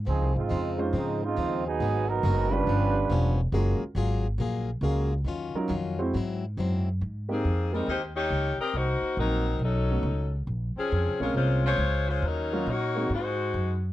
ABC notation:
X:1
M:4/4
L:1/8
Q:"Swing" 1/4=138
K:Db
V:1 name="Saxophone section"
z8 | z8 | z8 | z8 |
[K:Ab] z [E,B,CA]2 [G,CEB] [B,EGc] [B,EGd]2 [CGBe] | [B,E_Gc]2 [_G,CEB]2 [^F,^C^D=A]3 z | z [F,CDA]2 [A,DFB] [A,DFc] [A,Fcd]2 [A,DFc] | [_G,DEB]2 [B,E_Gd]2 [A,EGc]3 z |]
V:2 name="Grand piano"
z3 [A,DEFc]3 z2 | z3 [=G,D=DF_c]3 z2 | [A,DFGB] z4 z [A,DFGB] z | z [G,DEFB] z [A,C_FGc] z4 |
[K:Ab] z [A,B,CEG] z [A,B,CEA] z4 | z2 [_G,B,CE_G] z2 [=A,=B,^C^D^F] z2 | z3 [A,B,CDF]3 z2 | z [_G,B,DEF] z [A,B,CE_G] z4 |]
V:3 name="Trombone section"
[F,CEA] [A,CEF]3 [F,A,CE] [A,CEF]2 [G,_CEA]- | [G,_CEA] [G,CEB]2 [=G,=DF_c]4 z | z8 | z8 |
[K:Ab] z8 | z8 | z8 | z8 |]
V:4 name="Steel-string acoustic guitar"
[D,F,CE] z [D,F,CE] z [D,F,CE] z [D,F,CE] z | [A,_CGB] z [A,CGB] z [=G,,F,=B,^C] z [G,,F,B,C] z | [G,B,FA] z [G,B,FA] z [G,B,FA] z [G,B,FA] z | [E,G,DF] z [E,G,DF] z [A,,G,C=E] z [A,,G,CE] z |
[K:Ab] z8 | z8 | z8 | z8 |]
V:5 name="Upright bass" clef=bass
(3D,, C,, A,,, F,,2 A,,2 E,,2 | A,,,2 G,,,2 =G,,,2 _F,,,2 | G,,, z A,,,2 B,,,2 D,,2 | E,, z F,,2 A,,2 G,,2 |
[K:Ab] A,,2 F,,2 E,,2 D,, z | C,, z B,,,2 =B,,,2 ^C,,2 | B,,, z (3F,, D,, B,,, C,,2 D,,2 | E,,2 B,,2 A,,2 _G,,2 |]